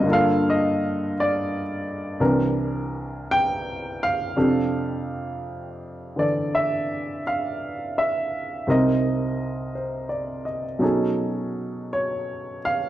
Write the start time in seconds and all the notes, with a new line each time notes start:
0.00 G2 D3
0.06 A#3 F4
0.12 A4 F5
0.50 D#5
1.20 D5
2.20 C2 C3 E3 D4 A#4
3.31 G5
4.03 F5
4.36 F2 C3 D4 G4 A4
6.16 D3 E3 A4 D5
6.55 E5
7.27 F5
7.98 E5
8.67 C2 C3 C4 D#4 A#4 D#5
9.75 C5
10.09 D5
10.45 D#5
10.79 B2 F#3 C#4 D#4
10.83 G#4 A4
11.93 C#5
12.65 F5